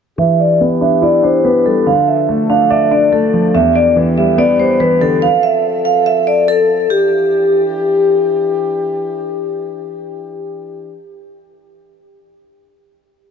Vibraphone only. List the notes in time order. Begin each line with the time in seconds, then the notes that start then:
0.19 E5
0.40 D5
0.82 E5
1.03 D5
1.24 C5
1.45 B4
1.66 A4
1.87 F5
2.08 E5
2.50 F5
2.71 E5
2.92 D5
3.13 A4
3.55 E5
3.76 D5
4.18 E5
4.39 D5
4.59 C5
4.80 B4
5.01 A4
5.22 F5
5.43 E5
5.85 F5
6.06 E5
6.27 D5
6.48 A4
6.90 G4